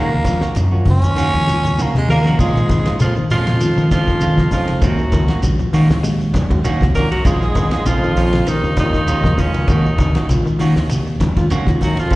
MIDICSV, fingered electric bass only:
0, 0, Header, 1, 3, 480
1, 0, Start_track
1, 0, Tempo, 608519
1, 1887, Time_signature, 4, 2, 24, 8
1, 9589, End_track
2, 0, Start_track
2, 0, Title_t, "Fingered electric bass"
2, 0, Program_c, 0, 33
2, 0, Note_on_c, 0, 39, 90
2, 147, Note_off_c, 0, 39, 0
2, 446, Note_on_c, 0, 42, 98
2, 818, Note_off_c, 0, 42, 0
2, 818, Note_on_c, 0, 39, 99
2, 904, Note_off_c, 0, 39, 0
2, 1057, Note_on_c, 0, 39, 81
2, 1436, Note_off_c, 0, 39, 0
2, 1535, Note_on_c, 0, 48, 93
2, 1622, Note_off_c, 0, 48, 0
2, 1646, Note_on_c, 0, 51, 95
2, 1836, Note_off_c, 0, 51, 0
2, 1884, Note_on_c, 0, 46, 102
2, 2075, Note_off_c, 0, 46, 0
2, 2368, Note_on_c, 0, 46, 94
2, 2470, Note_off_c, 0, 46, 0
2, 2607, Note_on_c, 0, 46, 90
2, 2796, Note_off_c, 0, 46, 0
2, 2979, Note_on_c, 0, 51, 93
2, 3167, Note_off_c, 0, 51, 0
2, 3335, Note_on_c, 0, 51, 81
2, 3520, Note_off_c, 0, 51, 0
2, 3801, Note_on_c, 0, 39, 109
2, 3992, Note_off_c, 0, 39, 0
2, 4042, Note_on_c, 0, 37, 84
2, 4145, Note_off_c, 0, 37, 0
2, 4287, Note_on_c, 0, 34, 98
2, 4388, Note_off_c, 0, 34, 0
2, 4526, Note_on_c, 0, 51, 94
2, 4652, Note_on_c, 0, 39, 87
2, 4663, Note_off_c, 0, 51, 0
2, 5031, Note_off_c, 0, 39, 0
2, 5132, Note_on_c, 0, 39, 98
2, 5219, Note_off_c, 0, 39, 0
2, 5374, Note_on_c, 0, 36, 105
2, 5563, Note_off_c, 0, 36, 0
2, 5717, Note_on_c, 0, 34, 96
2, 5908, Note_off_c, 0, 34, 0
2, 6203, Note_on_c, 0, 34, 101
2, 6305, Note_off_c, 0, 34, 0
2, 6434, Note_on_c, 0, 34, 81
2, 6627, Note_off_c, 0, 34, 0
2, 6810, Note_on_c, 0, 39, 98
2, 7000, Note_off_c, 0, 39, 0
2, 7156, Note_on_c, 0, 39, 92
2, 7347, Note_off_c, 0, 39, 0
2, 7636, Note_on_c, 0, 39, 106
2, 7828, Note_off_c, 0, 39, 0
2, 7876, Note_on_c, 0, 37, 82
2, 7981, Note_off_c, 0, 37, 0
2, 8118, Note_on_c, 0, 34, 95
2, 8222, Note_off_c, 0, 34, 0
2, 8358, Note_on_c, 0, 51, 86
2, 8489, Note_on_c, 0, 39, 97
2, 8501, Note_off_c, 0, 51, 0
2, 8869, Note_off_c, 0, 39, 0
2, 8963, Note_on_c, 0, 39, 97
2, 9053, Note_off_c, 0, 39, 0
2, 9204, Note_on_c, 0, 39, 102
2, 9397, Note_off_c, 0, 39, 0
2, 9554, Note_on_c, 0, 34, 102
2, 9589, Note_off_c, 0, 34, 0
2, 9589, End_track
3, 0, Start_track
3, 0, Title_t, "Muted fingered electric bass strokes"
3, 4419, Note_on_c, 9, 29, 41
3, 4498, Note_off_c, 9, 29, 0
3, 9589, End_track
0, 0, End_of_file